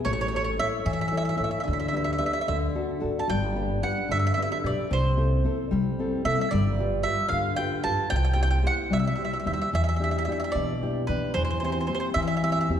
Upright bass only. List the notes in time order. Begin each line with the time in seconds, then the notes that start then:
0.06 A1
0.86 A2
1.40 A2
1.68 D2
2.49 D2
3.03 A1
3.30 G1
4.11 G2
4.64 B1
4.91 C2
5.72 C3
6.25 C3
6.52 G1
7.32 G2
7.85 G2
8.12 C2
8.92 C3
9.46 D#2
9.74 E2
10.55 E3
11.09 E3
11.35 E2
12.16 E3
12.69 E2